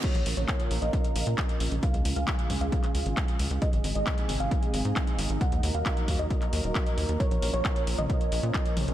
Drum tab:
CC |x---------------|----------------|----------------|----------------|
HH |xxoxxxoxxxoxxxox|xxoxxxoxxxoxxxox|xxoxxxo-xxoxxxox|xxoxxxo-xxoxxxox|
CP |----x-------x---|----x----x--x---|----x-------x---|----x----x--x---|
T2 |----------------|----------------|----------------|----------------|
BD |o---o---o---o---|o---o-o-o---o---|o---o---o---o---|o---o-o-o---o---|

CC |----------------|
HH |xxo-xxoxxxoxxxox|
CP |----x-------x---|
T2 |-------o------o-|
BD |o---o---o---o---|